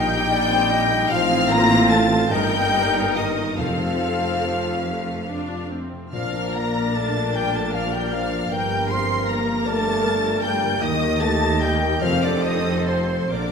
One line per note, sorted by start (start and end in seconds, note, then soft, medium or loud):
0.00 1.07 A#1 medium
0.00 1.07 A#2 medium
0.00 1.13 A#2 medium
0.00 0.12 D#3 medium
0.00 1.08 G3 loud
0.00 0.70 C4 medium
0.00 0.50 D#4 medium
0.00 1.10 D#4 medium
0.00 0.30 G4 medium
0.00 1.13 A#4 medium
0.00 0.11 C5 medium
0.00 0.33 D#5 medium
0.00 1.14 D#5 medium
0.00 0.79 G5 loud
0.00 1.08 G5 loud
0.00 1.14 G5 medium
0.00 1.08 G6 loud
0.12 0.32 G3 medium
0.12 1.69 C5 medium
0.31 0.51 A#3 medium
0.31 1.14 G4 medium
0.31 0.72 D5 medium
0.51 0.71 C4 medium
0.51 1.14 D#4 medium
0.70 0.90 A#3 medium
0.70 1.29 C4 medium
0.70 1.10 D#5 medium
0.90 1.10 G3 medium
0.90 1.14 A#3 medium
1.10 2.32 A1 medium
1.10 2.27 A1 medium
1.10 2.34 A2 loud
1.10 2.26 A2 loud
1.10 1.49 F3 loud
1.10 2.26 C4 loud
1.10 2.26 F4 loud
1.10 1.50 F5 loud
1.10 1.52 F5 loud
1.10 2.33 F5 loud
1.10 1.49 F6 loud
1.30 2.34 C4 medium
1.49 1.90 A#3 loud
1.49 1.89 F4 medium
1.49 1.89 A#5 loud
1.49 1.92 A#5 loud
1.49 1.89 A#6 loud
1.89 2.30 A3 medium
1.89 2.34 F4 medium
1.89 2.29 A5 medium
1.89 2.33 A5 medium
1.89 2.31 A6 loud
2.11 2.34 F5 medium
2.30 3.60 G1 medium
2.30 3.58 G1 medium
2.30 3.61 G2 medium
2.30 3.58 G2 medium
2.30 3.15 G3 loud
2.30 3.57 D#4 medium
2.30 3.58 A#4 medium
2.30 3.28 D#5 medium
2.30 3.14 G5 loud
2.30 3.17 G5 loud
2.30 3.13 G6 loud
2.52 3.61 A#3 medium
2.73 3.61 D#4 medium
2.94 3.35 D#5 medium
3.14 3.58 D#3 medium
3.14 3.61 A#4 medium
3.14 3.57 D#5 medium
3.14 3.58 D#5 medium
3.14 3.57 D#6 medium
3.37 3.61 D#5 medium
3.57 5.92 F1 medium
3.57 4.82 F2 medium
3.57 6.16 F2 medium
3.57 5.92 F2 medium
3.57 5.67 F3 medium
3.57 4.75 C4 medium
3.57 4.74 A4 medium
3.57 5.66 F5 medium
3.57 5.45 F5 medium
3.57 5.71 F6 medium
3.79 5.69 A3 medium
4.01 5.48 F4 medium
4.22 5.26 C5 medium
4.43 5.06 A4 medium
4.64 7.14 F5 soft
4.85 5.25 A3 medium
4.85 6.16 C6 medium
5.07 6.16 A4 soft
5.27 5.71 D4 medium
5.27 6.16 C5 soft
5.49 6.53 F4 soft
5.70 6.16 A3 soft
5.70 6.13 C4 medium
5.92 6.16 C3 soft
6.13 8.47 A#1 medium
6.13 7.30 A#2 medium
6.13 8.47 A#2 medium
6.13 8.54 A#2 medium
6.13 6.51 F3 medium
6.13 8.47 D4 medium
6.13 7.30 A#4 medium
6.13 8.47 D5 medium
6.13 6.58 F5 medium
6.13 6.52 F5 medium
6.13 6.52 F6 medium
6.34 8.11 A#3 medium
6.54 6.95 A#3 medium
6.54 7.93 F4 soft
6.54 6.95 A#5 medium
6.54 6.97 A#5 medium
6.54 6.95 A#6 medium
6.75 7.74 D5 medium
6.96 7.35 A3 medium
6.96 7.53 A#4 medium
6.96 7.36 A5 medium
6.96 7.35 A5 medium
6.96 7.35 A6 medium
7.15 9.46 F5 medium
7.35 7.54 G3 medium
7.35 8.49 A#4 medium
7.35 7.56 G5 medium
7.35 7.54 G5 medium
7.35 9.65 D6 medium
7.35 7.54 G6 medium
7.54 7.74 A3 medium
7.54 9.27 A#4 medium
7.54 7.75 A5 medium
7.54 7.74 A5 medium
7.54 7.74 A6 medium
7.73 7.93 F3 medium
7.73 9.08 D5 medium
7.73 7.92 F5 medium
7.73 7.94 F5 medium
7.73 7.93 F6 medium
7.93 8.13 G3 medium
7.93 8.89 F4 medium
7.93 8.12 G5 medium
7.93 8.14 G5 medium
7.93 8.12 G6 medium
8.12 8.51 F3 medium
8.12 8.69 A#3 soft
8.12 8.53 F5 medium
8.12 8.51 F5 medium
8.12 8.51 F6 medium
8.32 10.85 F3 soft
8.51 10.78 G1 medium
8.51 10.85 G2 medium
8.51 10.78 G2 medium
8.51 8.89 G3 medium
8.51 11.99 A#3 medium
8.51 10.78 A#4 medium
8.51 9.68 A#4 medium
8.51 8.90 G5 medium
8.51 8.92 G5 medium
8.51 8.90 G6 medium
8.70 10.41 A#3 medium
8.89 9.28 C4 medium
8.89 10.22 F4 medium
8.89 9.28 C6 medium
8.89 9.31 C6 medium
8.89 9.28 C7 loud
9.09 10.03 D5 medium
9.28 9.66 A#3 medium
9.28 9.85 A#4 medium
9.28 9.66 A#5 medium
9.28 9.68 A#5 medium
9.28 9.66 A#6 medium
9.47 10.85 F5 medium
9.66 10.41 A3 medium
9.66 10.81 D5 medium
9.66 10.15 A5 medium
9.66 10.43 A5 medium
9.66 10.85 D6 medium
9.66 10.42 A6 loud
9.86 11.60 A#4 medium
10.04 10.85 D5 medium
10.23 10.85 F4 medium
10.42 10.82 G3 medium
10.42 11.00 A#3 medium
10.42 10.82 G5 medium
10.42 10.81 G6 loud
10.62 10.85 D3 medium
10.81 12.00 D#2 medium
10.81 12.05 D#3 medium
10.81 11.22 D#3 loud
10.81 12.00 G4 medium
10.81 12.04 D#5 medium
10.81 11.22 D#5 loud
10.81 11.24 D#5 medium
10.81 11.21 D#6 loud
11.02 12.06 A#3 medium
11.21 11.62 A3 loud
11.21 12.05 G4 medium
11.21 11.62 A5 medium
11.21 11.61 A6 loud
11.42 12.42 C5 medium
11.61 12.02 G3 medium
11.61 12.05 A#4 medium
11.61 12.02 G5 medium
11.61 12.02 G6 medium
11.82 12.05 G5 medium
12.01 13.29 F1 medium
12.01 13.28 F2 medium
12.01 13.52 F3 medium
12.01 12.23 F3 medium
12.01 13.31 C4 medium
12.01 13.29 A4 medium
12.01 13.00 C5 medium
12.01 12.22 F5 loud
12.01 12.25 F5 loud
12.01 12.22 F6 loud
12.22 12.44 D3 medium
12.22 13.52 F4 medium
12.22 12.44 D5 medium
12.22 12.44 D6 medium
12.43 12.87 D#3 medium
12.43 13.34 C5 medium
12.43 12.87 D#5 medium
12.43 12.89 D#5 medium
12.43 12.87 D#6 loud
12.86 13.32 C3 medium
12.86 13.31 C5 medium
12.86 13.33 C5 medium
12.86 13.52 F5 medium
12.86 13.30 C6 medium
13.08 13.34 C6 medium
13.30 13.52 A#1 medium
13.30 13.52 A#2 medium
13.30 13.39 A#2 soft
13.30 13.52 A#2 medium
13.30 13.52 D3 medium
13.30 13.52 D4 medium
13.30 13.52 A#4 medium
13.30 13.52 D5 medium
13.30 13.52 D6 medium
13.40 13.47 A#2 soft
13.48 13.52 A#2 soft